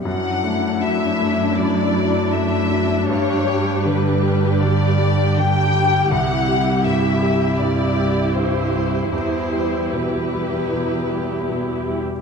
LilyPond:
<<
  \new Staff \with { instrumentName = "Violin section" } { \time 4/4 \key d \major \tempo 4 = 79 fis''4 e''4 d''4 e''4 | cis''4 b'4 d''4 g''4 | fis''4 e''4 d''4 c''4 | c''4 b'2~ b'8 r8 | }
  \new Staff \with { instrumentName = "Viola section" } { \time 4/4 \key d \major << { e'1 | g'1~ | g'1 | g'2.~ g'8. r16 | } \\ { d'1~ | d'1 | e'1~ | e'2.~ e'8. r16 | } >> }
  \new Staff \with { instrumentName = "Grand piano" } { \clef bass \time 4/4 \key d \major fis,8 a8 fis8 a8 fis,8 fis8 a8 fis8 | g,8 g8 d8 g8 d8 g8 d8 g8 | c,8 g8 g,8 g8 g,8 g8 g,8 g8 | e,8 g8 b,8 g8 b,8 g8 b,8 g8 | }
  \new Staff \with { instrumentName = "Cello section" } { \clef bass \time 4/4 \key d \major fis,1 | g,1 | c,1 | e,2.~ e,8. r16 | }
>>